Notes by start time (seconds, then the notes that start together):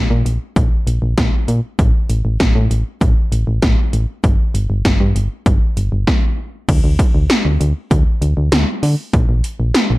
0.10 A#2
0.26 A#1, closed hi-hat
0.56 A#1, kick, closed hi-hat
0.87 A#1, closed hi-hat
1.02 A#1
1.18 A#1, kick, snare, closed hi-hat
1.48 A#2, closed hi-hat
1.79 A1, kick, closed hi-hat
2.10 A1, closed hi-hat
2.25 A1
2.40 A1, kick, snare, closed hi-hat
2.55 A2
2.71 A1, closed hi-hat
3.01 A1, kick, closed hi-hat
3.32 A1, closed hi-hat
3.47 A1
3.62 A1, kick, snare, closed hi-hat
3.93 A1, closed hi-hat
4.24 G1, kick, closed hi-hat
4.54 G1, closed hi-hat
4.70 G1
4.85 G1, kick, snare, closed hi-hat
5.00 G2
5.16 G1, closed hi-hat
5.46 G1, kick, closed hi-hat
5.77 G1, closed hi-hat
5.92 G1
6.07 kick, snare
6.69 D2, kick, closed hi-hat, crash
6.84 D2
6.99 kick, closed hi-hat
7.15 D2
7.30 snare, closed hi-hat
7.45 D2
7.61 D2, closed hi-hat
7.91 D2, kick, closed hi-hat
8.22 D2, closed hi-hat
8.37 D2
8.52 D2, snare, closed hi-hat
8.83 D3, open hi-hat
9.13 A#1, kick, closed hi-hat
9.29 A#1
9.44 closed hi-hat
9.60 A#1
9.74 snare, closed hi-hat
9.90 A#1